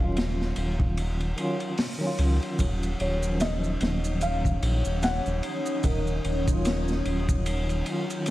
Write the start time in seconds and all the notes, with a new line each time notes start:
Already playing: D#1 D#3 F5
0.00 F#3 C#4
0.04 F4
0.17 snare, ride
0.41 snare
0.56 D#1, ride
0.80 kick
0.97 ride
1.20 ride
1.36 D#3 F#3 C#4, ride
1.41 F4
1.60 ride
1.78 snare, open hi-hat
1.98 D#3 F#3
2.04 C#4 F4
2.19 C#2, ride
2.42 ride
2.59 D#1 D#3 C#4 D#4 C#5 D#5, kick, ride, maracas
2.83 ride, maracas
3.00 D#1 C#5, ride
3.19 D#3 F#3, maracas
3.25 F3 C#4
3.40 D#5, snare, ride, maracas
3.64 maracas
3.81 D#1, snare, ride
4.04 maracas
4.21 F5, ride, maracas
4.45 kick, maracas
4.62 A#1, ride
4.85 D#1, maracas
5.02 F#5, snare, ride, maracas
5.26 D#1, maracas
5.43 ride
5.66 maracas
5.83 D#1 A#4, kick, ride, maracas
6.07 maracas
6.25 D#1, ride
6.44 D#3 F#3, kick, maracas
6.50 C#4 F4
6.65 snare, ride, maracas
6.88 snare, maracas
7.05 D#1, ride
7.29 kick, maracas
7.46 ride, maracas
7.69 ride, maracas
7.82 D#3 F#3, ride
7.88 C#4 F4
8.10 ride, maracas
8.26 ride, maracas